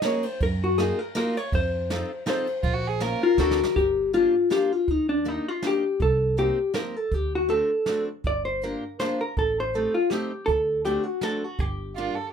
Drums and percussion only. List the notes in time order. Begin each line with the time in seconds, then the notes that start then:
0.02 snare, ride
0.23 ride
0.40 kick, ride
0.78 snare, ride
1.16 snare, ride
1.37 ride
1.52 kick, ride
1.90 snare, ride
2.27 snare, ride
2.47 ride
2.63 kick, ride
3.00 snare, ride
3.38 snare
3.51 snare
3.64 snare
3.76 kick, closed hi-hat
4.14 closed hi-hat
4.51 snare, closed hi-hat
4.88 kick, closed hi-hat
5.24 closed hi-hat
5.62 snare, closed hi-hat
6.00 kick, closed hi-hat
6.37 closed hi-hat
6.74 snare, closed hi-hat
7.11 kick, closed hi-hat
7.49 closed hi-hat
7.86 snare, closed hi-hat
8.24 kick, closed hi-hat
8.61 closed hi-hat
9.00 snare, closed hi-hat
9.37 kick, closed hi-hat
9.74 closed hi-hat
10.11 snare, closed hi-hat
10.48 kick, closed hi-hat
10.85 closed hi-hat
11.21 snare, closed hi-hat
11.59 kick, closed hi-hat
11.96 closed hi-hat